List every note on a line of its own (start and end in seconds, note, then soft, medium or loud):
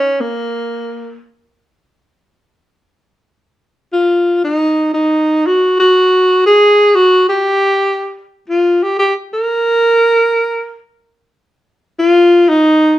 0.00 0.22 C#4 medium
0.20 1.22 A#3 medium
3.93 4.40 F4 medium
4.44 4.91 D#4 medium
4.94 5.48 D#4 medium
5.47 5.79 F#4 medium
5.80 6.42 F#4 medium
6.46 6.97 G#4 loud
6.95 7.28 F#4 loud
7.29 8.26 G4 loud
8.49 8.84 F4 medium
8.83 8.98 G4 medium
8.99 9.14 G4 medium
9.33 10.79 A#4 loud
11.99 12.50 F4 loud
12.49 12.99 D#4 medium